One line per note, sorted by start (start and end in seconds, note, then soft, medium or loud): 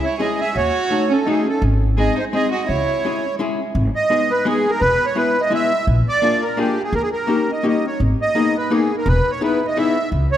0.04 0.19 E4 medium
0.04 0.21 C#5 medium
0.19 0.40 G#3 medium
0.19 0.40 C#4 medium
0.19 0.40 E4 soft
0.19 0.38 G#4 medium
0.19 0.40 G#4 medium
0.19 0.40 D#5 medium
0.38 0.54 G#4 medium
0.38 0.57 E5 medium
0.56 0.68 D#2 medium
0.56 1.07 F#4 medium
0.56 1.12 C#5 medium
0.91 1.10 A3 medium
0.91 1.10 D#4 soft
0.91 1.11 F#4 soft
0.91 1.11 A4 soft
1.11 1.25 C#4 medium
1.11 1.28 A4 medium
1.27 1.46 A3 medium
1.27 1.45 D#4 medium
1.27 1.46 D#4 medium
1.27 1.46 F#4 soft
1.27 1.48 G#4 medium
1.27 1.46 A4 medium
1.47 1.61 C#4 soft
1.47 1.62 A4 medium
1.62 2.08 G#1 medium
1.97 2.17 G#3 medium
1.97 2.17 C4 medium
1.97 2.17 D#4 soft
1.97 2.15 G#4 medium
1.97 2.17 G#4 medium
1.97 2.18 D#5 medium
2.16 2.23 D#4 medium
2.16 2.25 C5 medium
2.33 2.52 G#3 medium
2.33 2.53 C4 medium
2.33 2.53 D#4 soft
2.33 2.51 G#4 medium
2.33 2.53 G#4 medium
2.33 2.50 D#5 medium
2.52 2.67 F#4 medium
2.52 2.69 D#5 medium
2.68 2.81 C#2 medium
2.68 3.35 E4 medium
2.68 3.35 C#5 medium
3.05 3.24 G#3 medium
3.05 3.24 C#4 soft
3.05 3.24 E4 medium
3.05 3.24 G#4 medium
3.39 3.59 G#3 medium
3.39 3.59 C#4 medium
3.39 3.59 E4 medium
3.39 3.60 G#4 medium
3.75 3.88 G#1 medium
3.96 4.32 D#5 loud
4.10 4.30 G#3 medium
4.10 4.30 B3 medium
4.10 4.30 D#4 medium
4.10 4.30 G#4 medium
4.31 4.47 B4 medium
4.45 4.65 G#3 medium
4.45 4.65 B3 medium
4.45 4.65 D#4 medium
4.45 4.66 G#4 medium
4.45 4.71 G#4 medium
4.70 4.81 A#4 medium
4.81 4.94 E1 medium
4.81 5.06 B4 loud
5.06 5.18 C#5 medium
5.15 5.36 G#3 medium
5.15 5.36 B3 soft
5.15 5.36 E4 medium
5.15 5.36 G#4 medium
5.15 5.41 B4 medium
5.41 5.53 D#5 medium
5.50 5.71 G#3 medium
5.50 5.71 B3 medium
5.50 5.71 E4 medium
5.50 5.71 G#4 medium
5.54 5.86 E5 loud
5.87 6.00 A#1 medium
6.09 6.44 D5 loud
6.22 6.42 A#3 medium
6.22 6.42 D4 medium
6.22 6.42 F4 medium
6.22 6.42 G#4 medium
6.42 6.59 A#4 medium
6.57 6.77 A#3 medium
6.57 6.77 D4 medium
6.57 6.77 F4 medium
6.57 6.82 G4 medium
6.57 6.77 G#4 medium
6.84 6.95 G#4 medium
6.93 7.05 D#2 medium
6.93 7.02 A#4 medium
7.02 7.09 G#4 medium
7.13 7.51 A#4 medium
7.27 7.47 A#3 medium
7.27 7.48 C#4 soft
7.27 7.48 D#4 soft
7.27 7.48 G4 medium
7.52 7.66 D#5 medium
7.63 7.83 A#3 medium
7.63 7.84 C#4 medium
7.63 7.83 D#4 soft
7.63 7.84 G4 medium
7.68 7.86 D#5 medium
7.87 8.00 C#5 medium
8.00 8.13 G#1 medium
8.22 8.57 D#5 loud
8.35 8.54 A#3 medium
8.35 8.55 B3 soft
8.35 8.55 D#4 medium
8.35 8.55 G#4 medium
8.57 8.72 B4 medium
8.71 8.90 A#3 medium
8.71 8.90 B3 soft
8.71 8.90 D#4 medium
8.71 8.90 G#4 medium
8.71 8.96 G#4 medium
8.98 9.08 A#4 medium
9.06 9.18 E1 loud
9.06 9.31 B4 medium
9.31 9.42 C#5 medium
9.41 9.60 B3 soft
9.41 9.60 D#4 medium
9.41 9.61 E4 soft
9.41 9.61 G#4 medium
9.41 9.66 B4 medium
9.67 9.78 D#5 medium
9.77 9.96 B3 medium
9.77 9.96 D#4 medium
9.77 9.96 E4 medium
9.77 9.96 G#4 medium
9.77 10.10 E5 medium
10.12 10.24 C#2 medium
10.32 10.38 C#5 medium